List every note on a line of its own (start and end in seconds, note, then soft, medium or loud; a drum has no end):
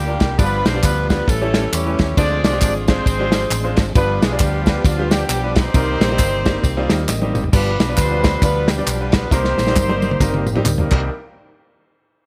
0.00 0.16 D2 medium
0.00 0.39 G3 medium
0.00 0.35 A#3 medium
0.00 0.35 D4 medium
0.00 0.36 D4 medium
0.00 0.35 F4 medium
0.00 0.39 G4 loud
0.07 0.27 D4 medium
0.07 0.27 F4 medium
0.07 0.27 A#4 medium
0.20 0.36 C2 medium
0.20 kick loud
0.20 snare loud
0.20 ride medium
0.20 tambourine medium
0.38 0.61 G1 loud
0.38 1.06 G2 medium
0.38 1.26 F3 medium
0.38 1.26 G3 medium
0.38 0.45 G#3 soft
0.38 0.60 B3 medium
0.38 0.65 B3 loud
0.38 0.60 D4 medium
0.38 1.26 D4 medium
0.38 1.24 D4 medium
0.38 0.61 F4 medium
0.38 1.24 F4 medium
0.38 1.26 G4 medium
0.38 0.61 G4 medium
0.38 0.65 B4 loud
0.38 0.61 D5 medium
0.38 kick loud
0.38 ride medium
0.38 tambourine loud
0.44 1.29 B3 medium
0.65 0.81 B1 medium
0.65 0.83 C4 loud
0.65 0.83 C5 loud
0.65 snare loud
0.65 ride medium
0.65 tambourine medium
0.74 0.92 B3 medium
0.74 0.92 D4 medium
0.74 0.92 F4 medium
0.74 0.92 G4 medium
0.74 0.92 D5 medium
0.83 1.21 D2 loud
0.83 1.08 B3 loud
0.83 1.08 B4 loud
0.83 kick loud
0.83 clap medium
0.83 ride medium
0.83 tambourine medium
1.09 1.26 B3 medium
1.09 1.25 B3 medium
1.09 1.25 D4 medium
1.09 1.25 F4 medium
1.09 1.25 G4 medium
1.09 1.26 B4 loud
1.09 1.25 D5 medium
1.09 kick medium
1.09 snare loud
1.09 ride medium
1.09 tambourine medium
1.27 1.66 A1 loud
1.27 1.95 A2 medium
1.27 2.16 E3 medium
1.27 2.15 G3 medium
1.27 2.15 A3 medium
1.27 1.73 A3 medium
1.27 2.16 C#4 medium
1.27 1.72 C#4 medium
1.27 1.72 E4 medium
1.27 2.15 G4 medium
1.27 1.73 A4 loud
1.27 kick loud
1.27 ride medium
1.27 tambourine medium
1.42 1.65 A3 medium
1.42 1.65 C#4 medium
1.42 1.65 E4 medium
1.42 1.66 G4 medium
1.42 1.66 C#5 medium
1.54 snare loud
1.54 ride medium
1.54 tambourine medium
1.72 1.95 E2 medium
1.72 2.17 C#4 medium
1.72 2.14 E4 medium
1.72 2.14 G4 medium
1.72 2.17 C#5 loud
1.72 clap loud
1.72 ride medium
1.72 tambourine loud
1.86 2.05 A3 medium
1.86 2.05 C#4 medium
1.86 2.05 E4 medium
1.86 2.05 G4 medium
1.86 2.05 B4 medium
1.99 2.15 D#2 medium
1.99 kick loud
1.99 snare loud
1.99 ride medium
1.99 tambourine medium
2.17 2.40 D2 loud
2.17 2.85 D3 medium
2.17 2.24 E3 medium
2.17 2.39 G#3 medium
2.17 3.92 G#3 medium
2.17 3.92 C4 medium
2.17 2.39 C4 medium
2.17 2.42 D4 loud
2.17 2.39 D4 medium
2.17 3.93 D4 medium
2.17 2.88 F4 medium
2.17 2.39 F4 medium
2.17 3.93 G#4 medium
2.17 2.87 G#4 medium
2.17 2.39 C5 medium
2.17 2.42 D5 loud
2.17 kick loud
2.17 ride medium
2.17 tambourine medium
2.23 3.94 F3 medium
2.43 2.59 C2 medium
2.43 2.60 D4 loud
2.43 2.60 D5 loud
2.43 snare loud
2.43 ride medium
2.43 tambourine medium
2.53 2.70 G#3 medium
2.53 2.70 C4 medium
2.53 2.70 D4 medium
2.53 2.71 F4 medium
2.53 2.71 G4 medium
2.61 3.00 G#1 loud
2.61 2.73 D4 loud
2.61 2.73 D5 loud
2.61 kick loud
2.61 clap medium
2.61 ride medium
2.61 tambourine loud
2.88 3.03 G#3 medium
2.88 3.74 C4 loud
2.88 3.03 C4 medium
2.88 3.03 D4 medium
2.88 3.03 F4 medium
2.88 3.74 F4 medium
2.88 3.74 G#4 medium
2.88 3.74 C5 loud
2.88 3.04 C5 medium
2.88 kick medium
2.88 snare loud
2.88 ride medium
2.88 tambourine medium
3.06 3.44 G#1 loud
3.06 kick loud
3.06 ride medium
3.06 tambourine medium
3.19 3.44 G#3 medium
3.19 3.44 C4 medium
3.19 3.44 D4 medium
3.19 3.44 F4 medium
3.19 3.44 G4 medium
3.32 snare loud
3.32 ride medium
3.32 tambourine medium
3.50 3.73 A1 medium
3.50 clap loud
3.50 ride medium
3.50 tambourine loud
3.64 3.83 G#3 medium
3.64 3.83 C4 medium
3.64 3.83 D4 medium
3.64 3.83 F4 medium
3.64 3.84 C5 medium
3.77 3.93 G#1 medium
3.77 kick loud
3.77 snare loud
3.77 ride medium
3.77 tambourine medium
3.95 4.18 G1 loud
3.95 4.63 G2 medium
3.95 5.71 F3 medium
3.95 4.17 G3 medium
3.95 5.71 G3 medium
3.95 5.71 B3 medium
3.95 4.18 B3 medium
3.95 4.21 B3 loud
3.95 5.71 D4 medium
3.95 4.39 D4 medium
3.95 4.18 D4 medium
3.95 4.81 F4 medium
3.95 4.18 F4 medium
3.95 5.71 G4 medium
3.95 4.18 B4 medium
3.95 4.21 B4 loud
3.95 kick loud
3.95 ride medium
3.95 tambourine medium
4.21 4.37 B1 medium
4.21 4.40 G#3 medium
4.21 4.40 G#4 medium
4.21 snare loud
4.21 ride medium
4.21 tambourine medium
4.32 4.49 G3 medium
4.32 4.49 B3 medium
4.32 4.49 D4 medium
4.32 4.49 F4 medium
4.32 4.49 D5 medium
4.39 4.78 D2 loud
4.39 4.85 G3 medium
4.39 4.84 B3 medium
4.39 4.84 D4 medium
4.39 4.85 G4 loud
4.39 kick loud
4.39 clap loud
4.39 ride medium
4.39 tambourine medium
4.66 4.82 G3 medium
4.66 4.82 B3 medium
4.66 4.82 D4 medium
4.66 4.82 F4 medium
4.66 4.82 B4 medium
4.66 kick medium
4.66 snare loud
4.66 ride medium
4.66 tambourine medium
4.84 5.23 D2 loud
4.84 5.12 F3 medium
4.84 5.10 B3 medium
4.84 5.10 D4 medium
4.84 5.12 F4 medium
4.84 kick loud
4.84 ride medium
4.84 tambourine medium
4.98 5.22 G3 medium
4.98 5.23 B3 medium
4.98 5.23 D4 medium
4.98 5.23 F4 medium
4.98 5.23 G4 medium
5.11 5.55 G3 medium
5.11 5.71 B3 medium
5.11 5.70 D4 medium
5.11 5.55 G4 medium
5.11 snare loud
5.11 ride medium
5.11 tambourine medium
5.29 5.67 B1 medium
5.29 clap loud
5.29 ride medium
5.29 tambourine loud
5.43 5.62 G3 medium
5.43 5.62 B3 medium
5.43 5.62 D4 medium
5.43 5.62 F4 medium
5.43 5.63 B4 medium
5.56 7.05 C4 loud
5.56 7.05 D#4 medium
5.56 7.05 G4 medium
5.56 7.05 C5 loud
5.56 kick loud
5.56 snare loud
5.56 ride medium
5.56 tambourine soft
5.74 5.97 C2 loud
5.74 6.42 C3 medium
5.74 7.50 D#3 medium
5.74 7.49 G3 medium
5.74 5.96 G3 medium
5.74 7.50 A#3 medium
5.74 5.96 A#3 medium
5.74 7.50 C4 medium
5.74 5.97 C4 medium
5.74 5.97 D#4 medium
5.74 7.49 G4 medium
5.74 5.97 A#4 medium
5.74 kick loud
5.74 ride medium
5.74 tambourine medium
6.00 6.16 A#1 medium
6.00 snare loud
6.00 ride medium
6.00 tambourine medium
6.10 6.28 G3 medium
6.10 6.28 A#3 medium
6.10 6.28 C4 medium
6.10 6.28 D#4 medium
6.10 6.28 G4 medium
6.19 6.57 G1 loud
6.19 kick loud
6.19 clap loud
6.19 ride medium
6.19 tambourine loud
6.45 6.60 G3 medium
6.45 6.60 A#3 medium
6.45 6.61 C4 medium
6.45 6.61 D#4 medium
6.45 6.61 G4 loud
6.45 kick loud
6.45 snare loud
6.45 ride medium
6.45 tambourine medium
6.63 6.86 C2 loud
6.63 kick loud
6.63 ride medium
6.63 tambourine medium
6.77 7.01 G3 medium
6.77 7.01 A#3 medium
6.77 7.01 C4 medium
6.77 7.01 D#4 medium
6.77 7.01 F4 loud
6.90 7.06 D#2 medium
6.90 snare loud
6.90 ride medium
6.90 tambourine medium
7.08 7.31 A1 medium
7.08 7.50 D#5 medium
7.08 snare medium
7.08 clap loud
7.08 tambourine loud
7.22 7.41 G3 medium
7.22 7.41 A#3 medium
7.22 7.41 C4 medium
7.22 7.41 D#4 medium
7.22 7.41 G4 medium
7.22 high tom medium
7.35 7.51 G#1 medium
7.35 mid tom loud
7.35 tambourine medium
7.44 floor tom medium
7.53 7.76 G1 loud
7.53 8.20 G2 medium
7.53 9.28 F3 medium
7.53 7.75 G3 medium
7.53 9.28 G3 medium
7.53 7.59 A#3 medium
7.53 7.75 B3 medium
7.53 8.39 B3 medium
7.53 9.28 D4 medium
7.53 7.75 D4 medium
7.53 8.39 D4 medium
7.53 7.75 F4 medium
7.53 9.28 G4 medium
7.53 7.95 G4 loud
7.53 7.75 B4 medium
7.53 8.39 B4 medium
7.53 kick loud
7.53 crash loud
7.53 tambourine medium
7.58 9.31 B2 medium
7.79 7.95 B1 medium
7.79 snare loud
7.79 ride medium
7.79 tambourine medium
7.89 7.99 G3 medium
7.89 7.99 B3 medium
7.89 7.99 D4 medium
7.89 7.99 F4 medium
7.89 8.00 B4 medium
7.97 8.36 D2 loud
7.97 8.43 C4 loud
7.97 8.42 F4 medium
7.97 8.43 C5 loud
7.97 kick medium
7.97 clap medium
7.97 ride medium
7.97 tambourine loud
8.11 8.30 G3 medium
8.11 8.30 B3 medium
8.11 8.30 D4 medium
8.11 8.30 F4 medium
8.11 8.30 B4 medium
8.24 kick medium
8.24 snare loud
8.24 ride medium
8.24 tambourine medium
8.42 8.80 D2 loud
8.42 8.64 G3 medium
8.42 8.64 B3 medium
8.42 8.69 B3 loud
8.42 8.64 D4 medium
8.42 8.68 D4 medium
8.42 8.65 F4 medium
8.42 9.28 F4 medium
8.42 8.69 B4 loud
8.42 8.65 D5 medium
8.42 kick loud
8.42 clap medium
8.42 ride medium
8.42 tambourine medium
8.68 9.14 G3 medium
8.68 9.14 B3 medium
8.68 9.28 D4 medium
8.68 9.14 G4 medium
8.68 snare loud
8.68 ride medium
8.68 tambourine medium
8.78 8.88 G3 medium
8.78 8.89 B3 medium
8.78 8.89 D4 medium
8.78 8.89 F4 medium
8.78 8.89 D5 medium
8.87 9.25 B1 loud
8.87 clap loud
8.87 ride medium
8.87 tambourine loud
9.00 9.19 G3 medium
9.00 9.20 B3 medium
9.00 9.20 D4 medium
9.00 9.20 F4 medium
9.00 9.20 B4 medium
9.12 9.32 B3 medium
9.12 9.32 B4 loud
9.12 kick loud
9.12 snare loud
9.12 ride medium
9.12 tambourine medium
9.31 9.54 C2 loud
9.31 9.99 C3 medium
9.31 10.88 D#3 medium
9.31 9.53 G3 medium
9.31 10.89 G3 medium
9.31 9.53 A#3 medium
9.31 10.88 A#3 medium
9.31 9.53 C4 medium
9.31 10.89 C4 medium
9.31 10.62 C4 loud
9.31 9.54 D#4 medium
9.31 10.62 D#4 medium
9.31 9.38 F4 medium
9.31 10.62 G4 medium
9.31 9.54 A#4 medium
9.31 10.62 C5 loud
9.31 kick loud
9.31 snare medium
9.31 tambourine loud
9.37 10.91 G4 medium
9.45 snare medium
9.58 9.73 A#1 medium
9.58 snare medium
9.58 tambourine medium
9.67 9.78 G3 medium
9.67 9.78 A#3 medium
9.67 9.78 C4 medium
9.67 9.78 D#4 medium
9.67 9.78 F4 medium
9.67 snare medium
9.76 10.14 G1 loud
9.76 kick loud
9.76 clap loud
9.76 high tom medium
9.76 tambourine loud
9.89 10.08 G3 medium
9.89 10.09 A#3 medium
9.89 10.09 C4 medium
9.89 10.09 D#4 medium
9.89 10.09 C5 loud
9.89 high tom medium
10.02 high tom medium
10.02 tambourine medium
10.11 mid tom medium
10.20 10.58 G1 loud
10.20 10.42 G3 medium
10.20 10.42 A#3 medium
10.20 10.42 C4 medium
10.20 10.43 D#4 medium
10.20 10.43 A#4 loud
10.20 kick loud
10.20 clap medium
10.20 mid tom medium
10.20 tambourine medium
10.34 mid tom medium
10.47 mid tom medium
10.47 tambourine medium
10.56 10.66 G3 medium
10.56 10.67 A#3 medium
10.56 10.67 C4 medium
10.56 10.67 D#4 medium
10.56 10.67 G4 loud
10.56 mid tom loud
10.65 10.88 D2 medium
10.65 clap loud
10.65 mid tom loud
10.65 tambourine loud
10.78 10.90 G3 medium
10.78 10.92 A#3 medium
10.78 10.90 C4 medium
10.78 10.90 D#4 medium
10.78 10.90 A#4 medium
10.78 floor tom loud
10.91 11.09 C2 medium
10.91 11.09 D#3 medium
10.91 11.09 G3 medium
10.91 11.09 A#3 medium
10.91 11.09 C4 medium
10.91 11.09 D#4 medium
10.91 11.09 G4 loud
10.91 11.09 A#4 loud
10.91 kick loud
10.91 clap medium
10.91 crash medium